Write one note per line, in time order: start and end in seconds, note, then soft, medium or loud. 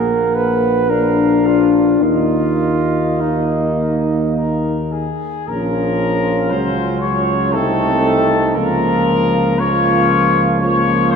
0.00 1.98 A#1 medium
0.00 0.57 A#3 medium
0.00 0.91 A#3 medium
0.00 0.37 A#4 medium
0.00 0.89 F#5 medium
0.35 0.91 B4 medium
0.89 2.03 D4 medium
0.89 1.48 A#4 medium
0.89 1.84 F5 medium
1.47 2.03 F4 medium
2.01 5.10 D#2 soft
2.01 5.14 A#3 medium
2.01 4.93 D#4 medium
2.01 3.22 F4 medium
2.01 4.31 D#5 soft
3.21 4.93 D#4 soft
4.37 4.89 A#4 medium
4.92 5.47 G#4 medium
5.48 6.54 A#1 medium
5.48 6.53 F3 medium
5.48 7.57 C#4 medium
5.48 7.56 F4 medium
5.48 6.52 A#4 medium
6.50 7.55 C#2 medium
6.50 7.56 F#3 medium
6.50 7.02 C5 medium
7.01 7.52 C#5 medium
7.53 8.55 C2 medium
7.53 8.55 A3 medium
7.53 8.57 C4 medium
7.53 8.57 D#4 medium
7.53 8.55 A4 medium
8.55 11.16 C#2 medium
8.55 9.57 F3 medium
8.55 9.59 A#3 medium
8.55 9.58 F4 medium
8.55 9.57 A#4 medium
9.59 10.60 F3 medium
9.59 10.61 A#3 medium
9.59 10.60 F4 medium
9.59 10.44 C#5 medium
10.61 11.16 F3 medium
10.61 11.16 A#3 medium
10.61 11.16 F4 medium
10.61 11.10 C#5 medium
11.10 11.16 C5 medium